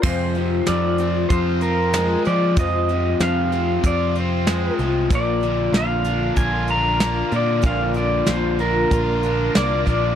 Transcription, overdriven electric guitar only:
X:1
M:4/4
L:1/8
Q:1/4=94
K:Fdor
V:1 name="Overdriven electric guitar" clef=bass
F,, C, F, C F C A, F, | F,, C, F, C F C A, F, | B,, D, D, D F D B, D, | B,, D, D, D F D B, D, |]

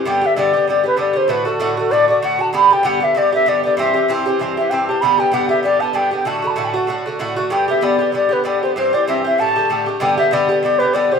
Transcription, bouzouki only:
X:1
M:4/4
L:1/8
Q:"Swing" 1/4=193
K:G
V:1 name="Bouzouki"
[G,,D,B,G] [D,B,G] [G,,D,B,G] [D,B,G] [G,,D,B,G] [D,B,G] [G,,D,B,G] [D,B,G] | [A,,D,A,F] [D,A,F] [A,,D,A,F] [D,A,F] [A,,D,A,F] [D,A,F] [A,,D,A,F] [D,A,F] | [G,,D,B,G] [D,B,G] [G,,D,B,G] [D,B,G] [G,,D,B,G] [D,B,G] [G,,D,B,G] [D,B,G] | [G,,E,CG] [E,CG] [G,,E,CG] [E,CG] [G,,E,CG] [E,CG] [G,,E,CG] [E,CG] |
[G,,D,B,G] [D,B,G] [G,,D,B,G] [D,B,G] [G,,D,B,G] [D,B,G] [G,,D,B,G] [D,B,G] | [A,,D,A,F] [D,A,F] [A,,D,A,F] [D,A,F] [A,,D,A,F] [D,A,F] [A,,D,A,F] [D,A,F] | [G,,D,B,G] [D,B,G] [G,,D,B,G] [D,B,G] [G,,D,B,G] [D,B,G] [G,,D,B,G] [D,B,G] | [G,,E,CG] [E,CG] [G,,E,CG] [E,CG] [A,,D,A,G] [D,A,G] [A,,D,A,G] [D,A,G] |
[G,,D,B,G] [D,B,G] [G,,D,B,G] [D,B,G] [G,,D,B,G] [D,B,G] [G,,D,B,G] [D,B,G] |]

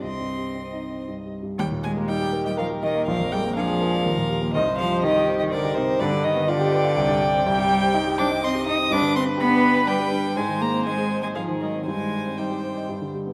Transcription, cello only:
X:1
M:3/4
L:1/16
Q:1/4=122
K:Cm
V:1 name="Cello" clef=bass
C8 z4 | [K:Eb] G,2 A,2 G,3 G, F,2 E,2 | F,2 G,2 F,8 | E,2 F,2 E,3 E, D,2 C,2 |
D,2 E,2 D,8 | [K:Cm] G,6 D2 C2 E2 | D2 C2 =B,4 G,4 | A,2 B,2 A,3 A, F,2 E,2 |
A,4 G,6 z2 |]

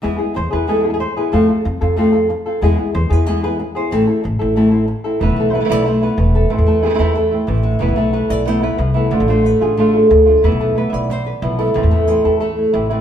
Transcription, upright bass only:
X:1
M:4/4
L:1/16
Q:1/4=185
K:none
V:1 name="Upright bass" clef=bass
E,,2 z2 E,,2 E,,8 z2 | F,,2 z2 F,,2 F,,8 z2 | E,,2 z2 E,,2 E,,8 z2 | A,,,2 z2 A,,,2 A,,,8 z2 |
E,,, B,,,4- B,,, B,,,6 E,,,4 | A,,, E,,4- E,, E,,6 A,,,4 | E,,, B,,,4- B,,, B,,,6 C,,4 | D,, A,,,4- A,,, A,,,6 D,,4 |
E,, B,,,4- B,,, B,,,6 B,,,4 | A,,, E,,4- E,, E,,6 A,,,4 |]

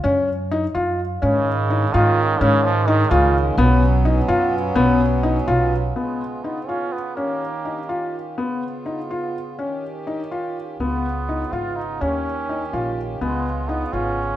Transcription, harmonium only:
X:1
M:5/8
L:1/8
Q:1/4=125
K:Dbmix
V:1 name="Harmonium"
z4 z | [E,A,D]4- [E,A,D]- | [E,A,D]4- [E,A,D] | [G,CD]4- [G,CD]- |
[G,CD]4- [G,CD] | [D,CF]4- [D,CF] | [E,D=G]4- [E,DG] | [D,CF]4- [D,CF] |
[E,D=G]4- [E,DG] | [D,CF]4- [D,CF] | [E,D=G]4- [E,DG] | [D,CF]4- [D,CF] |]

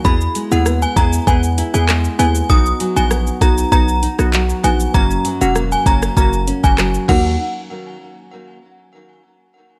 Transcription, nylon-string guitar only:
X:1
M:4/4
L:1/8
Q:1/4=98
K:Fblyd
V:1 name="Nylon-string guitar"
=E ^G, =B, E B, E G, B, | ^D ^F, =B, D B, D F, B, | [G,,D] G, B, D B, D G, [E,G,B,E] | z8 |]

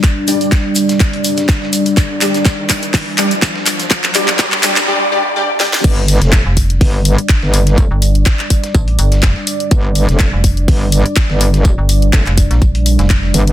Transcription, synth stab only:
X:1
M:4/4
L:1/16
Q:"Swing 16ths" 1/4=124
K:Cmix
V:1 name="Synth stab"
z2 [G,DGd]12- [G,DGd]2 | z2 [G,DGd] z6 z [G,DGd] z4 z | z2 [G,DGd] z3 [G,DGd] z [G,DGd] z [G,DGd] z [G,DGd] z [G,DGd] z | z16 |
z16 | z16 | z16 |]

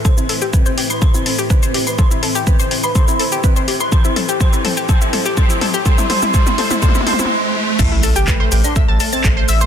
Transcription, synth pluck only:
X:1
M:4/4
L:1/16
Q:1/4=124
K:Am
V:1 name="Synth pluck"
A E A G B c G c' A E A G B c G c' | A E A G B c G c' A E A G B c G c' | A E A G A E A G A E A G A E A G | A E A E A E A E A E A E z4 |
[Aa] [Ee] [Aa] [Gg] [Bb] [cc'] [Gg] c' [ee'] [aa'] [Aa] [aa'] c' [cc'] [ee'] [cc'] |]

